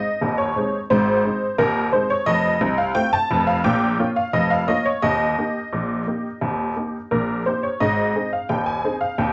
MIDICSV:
0, 0, Header, 1, 2, 480
1, 0, Start_track
1, 0, Key_signature, -4, "major"
1, 0, Tempo, 689655
1, 631, Time_signature, 2, 2, 24, 8
1, 6492, End_track
2, 0, Start_track
2, 0, Title_t, "Honky-tonk piano"
2, 0, Program_c, 0, 3
2, 0, Note_on_c, 0, 75, 83
2, 149, Note_on_c, 0, 27, 71
2, 149, Note_on_c, 0, 39, 64
2, 252, Note_off_c, 0, 75, 0
2, 263, Note_on_c, 0, 73, 80
2, 354, Note_off_c, 0, 27, 0
2, 354, Note_off_c, 0, 39, 0
2, 390, Note_on_c, 0, 56, 49
2, 392, Note_on_c, 0, 60, 49
2, 398, Note_on_c, 0, 63, 49
2, 522, Note_off_c, 0, 56, 0
2, 523, Note_off_c, 0, 60, 0
2, 528, Note_off_c, 0, 63, 0
2, 554, Note_off_c, 0, 73, 0
2, 627, Note_on_c, 0, 72, 87
2, 631, Note_on_c, 0, 32, 77
2, 631, Note_on_c, 0, 44, 75
2, 834, Note_off_c, 0, 32, 0
2, 834, Note_off_c, 0, 44, 0
2, 868, Note_on_c, 0, 56, 49
2, 872, Note_on_c, 0, 60, 45
2, 874, Note_on_c, 0, 63, 52
2, 1000, Note_off_c, 0, 56, 0
2, 1002, Note_off_c, 0, 60, 0
2, 1004, Note_off_c, 0, 63, 0
2, 1083, Note_off_c, 0, 72, 0
2, 1102, Note_on_c, 0, 70, 96
2, 1103, Note_on_c, 0, 39, 73
2, 1104, Note_on_c, 0, 27, 76
2, 1296, Note_off_c, 0, 70, 0
2, 1309, Note_off_c, 0, 27, 0
2, 1309, Note_off_c, 0, 39, 0
2, 1340, Note_on_c, 0, 72, 76
2, 1343, Note_on_c, 0, 56, 45
2, 1348, Note_on_c, 0, 60, 53
2, 1349, Note_on_c, 0, 63, 53
2, 1462, Note_on_c, 0, 73, 87
2, 1463, Note_off_c, 0, 72, 0
2, 1476, Note_off_c, 0, 56, 0
2, 1480, Note_off_c, 0, 60, 0
2, 1480, Note_off_c, 0, 63, 0
2, 1575, Note_on_c, 0, 75, 101
2, 1579, Note_on_c, 0, 29, 78
2, 1579, Note_on_c, 0, 41, 75
2, 1584, Note_off_c, 0, 73, 0
2, 1774, Note_off_c, 0, 29, 0
2, 1774, Note_off_c, 0, 41, 0
2, 1817, Note_on_c, 0, 36, 82
2, 1922, Note_off_c, 0, 75, 0
2, 1934, Note_on_c, 0, 77, 90
2, 2014, Note_off_c, 0, 36, 0
2, 2051, Note_on_c, 0, 79, 112
2, 2052, Note_on_c, 0, 60, 56
2, 2054, Note_on_c, 0, 57, 53
2, 2054, Note_on_c, 0, 65, 49
2, 2059, Note_off_c, 0, 77, 0
2, 2177, Note_on_c, 0, 81, 111
2, 2178, Note_off_c, 0, 79, 0
2, 2187, Note_off_c, 0, 60, 0
2, 2188, Note_off_c, 0, 57, 0
2, 2189, Note_off_c, 0, 65, 0
2, 2301, Note_on_c, 0, 41, 91
2, 2302, Note_on_c, 0, 29, 86
2, 2371, Note_off_c, 0, 81, 0
2, 2414, Note_on_c, 0, 77, 90
2, 2494, Note_off_c, 0, 29, 0
2, 2494, Note_off_c, 0, 41, 0
2, 2535, Note_on_c, 0, 79, 104
2, 2536, Note_on_c, 0, 46, 88
2, 2538, Note_on_c, 0, 34, 76
2, 2539, Note_off_c, 0, 77, 0
2, 2743, Note_off_c, 0, 46, 0
2, 2744, Note_off_c, 0, 34, 0
2, 2777, Note_on_c, 0, 58, 47
2, 2781, Note_on_c, 0, 61, 47
2, 2781, Note_on_c, 0, 65, 58
2, 2826, Note_off_c, 0, 79, 0
2, 2897, Note_on_c, 0, 77, 84
2, 2910, Note_off_c, 0, 58, 0
2, 2913, Note_off_c, 0, 61, 0
2, 2914, Note_off_c, 0, 65, 0
2, 3016, Note_on_c, 0, 41, 71
2, 3016, Note_on_c, 0, 75, 91
2, 3017, Note_on_c, 0, 29, 73
2, 3020, Note_off_c, 0, 77, 0
2, 3135, Note_on_c, 0, 77, 92
2, 3139, Note_off_c, 0, 75, 0
2, 3223, Note_off_c, 0, 29, 0
2, 3223, Note_off_c, 0, 41, 0
2, 3256, Note_on_c, 0, 58, 49
2, 3256, Note_on_c, 0, 75, 86
2, 3259, Note_off_c, 0, 77, 0
2, 3260, Note_on_c, 0, 61, 48
2, 3264, Note_on_c, 0, 65, 53
2, 3378, Note_on_c, 0, 73, 80
2, 3380, Note_off_c, 0, 75, 0
2, 3391, Note_off_c, 0, 58, 0
2, 3393, Note_off_c, 0, 61, 0
2, 3396, Note_off_c, 0, 65, 0
2, 3496, Note_on_c, 0, 75, 92
2, 3499, Note_on_c, 0, 39, 83
2, 3501, Note_off_c, 0, 73, 0
2, 3501, Note_on_c, 0, 27, 63
2, 3706, Note_off_c, 0, 39, 0
2, 3707, Note_off_c, 0, 27, 0
2, 3745, Note_on_c, 0, 58, 43
2, 3747, Note_on_c, 0, 63, 42
2, 3749, Note_on_c, 0, 67, 46
2, 3877, Note_off_c, 0, 58, 0
2, 3879, Note_off_c, 0, 63, 0
2, 3881, Note_off_c, 0, 67, 0
2, 3985, Note_on_c, 0, 34, 60
2, 3985, Note_on_c, 0, 46, 62
2, 4191, Note_off_c, 0, 34, 0
2, 4191, Note_off_c, 0, 46, 0
2, 4226, Note_on_c, 0, 58, 41
2, 4229, Note_on_c, 0, 63, 43
2, 4233, Note_on_c, 0, 67, 43
2, 4359, Note_off_c, 0, 58, 0
2, 4361, Note_off_c, 0, 63, 0
2, 4364, Note_off_c, 0, 67, 0
2, 4464, Note_on_c, 0, 39, 66
2, 4465, Note_on_c, 0, 27, 64
2, 4671, Note_off_c, 0, 39, 0
2, 4672, Note_off_c, 0, 27, 0
2, 4707, Note_on_c, 0, 58, 37
2, 4709, Note_on_c, 0, 63, 38
2, 4712, Note_on_c, 0, 67, 41
2, 4840, Note_off_c, 0, 58, 0
2, 4842, Note_off_c, 0, 63, 0
2, 4844, Note_off_c, 0, 67, 0
2, 4920, Note_off_c, 0, 75, 0
2, 4950, Note_on_c, 0, 70, 67
2, 4951, Note_on_c, 0, 34, 60
2, 4953, Note_on_c, 0, 46, 59
2, 5156, Note_off_c, 0, 34, 0
2, 5157, Note_off_c, 0, 46, 0
2, 5179, Note_off_c, 0, 70, 0
2, 5193, Note_on_c, 0, 72, 63
2, 5195, Note_on_c, 0, 58, 37
2, 5197, Note_on_c, 0, 63, 42
2, 5200, Note_on_c, 0, 67, 39
2, 5311, Note_on_c, 0, 73, 66
2, 5313, Note_off_c, 0, 72, 0
2, 5326, Note_off_c, 0, 58, 0
2, 5328, Note_off_c, 0, 63, 0
2, 5331, Note_off_c, 0, 67, 0
2, 5432, Note_off_c, 0, 73, 0
2, 5432, Note_on_c, 0, 75, 86
2, 5433, Note_on_c, 0, 32, 59
2, 5435, Note_on_c, 0, 44, 77
2, 5638, Note_off_c, 0, 32, 0
2, 5639, Note_off_c, 0, 44, 0
2, 5671, Note_on_c, 0, 60, 38
2, 5677, Note_on_c, 0, 63, 41
2, 5679, Note_on_c, 0, 68, 43
2, 5775, Note_off_c, 0, 75, 0
2, 5796, Note_on_c, 0, 77, 65
2, 5804, Note_off_c, 0, 60, 0
2, 5808, Note_off_c, 0, 63, 0
2, 5810, Note_off_c, 0, 68, 0
2, 5910, Note_on_c, 0, 79, 79
2, 5913, Note_on_c, 0, 27, 65
2, 5914, Note_on_c, 0, 39, 62
2, 5915, Note_off_c, 0, 77, 0
2, 6028, Note_on_c, 0, 80, 83
2, 6032, Note_off_c, 0, 79, 0
2, 6118, Note_off_c, 0, 27, 0
2, 6118, Note_off_c, 0, 39, 0
2, 6155, Note_on_c, 0, 60, 43
2, 6159, Note_on_c, 0, 63, 49
2, 6161, Note_on_c, 0, 68, 48
2, 6223, Note_off_c, 0, 80, 0
2, 6269, Note_on_c, 0, 77, 78
2, 6287, Note_off_c, 0, 60, 0
2, 6289, Note_off_c, 0, 63, 0
2, 6291, Note_off_c, 0, 68, 0
2, 6391, Note_off_c, 0, 77, 0
2, 6391, Note_on_c, 0, 39, 78
2, 6391, Note_on_c, 0, 79, 71
2, 6394, Note_on_c, 0, 27, 61
2, 6492, Note_off_c, 0, 27, 0
2, 6492, Note_off_c, 0, 39, 0
2, 6492, Note_off_c, 0, 79, 0
2, 6492, End_track
0, 0, End_of_file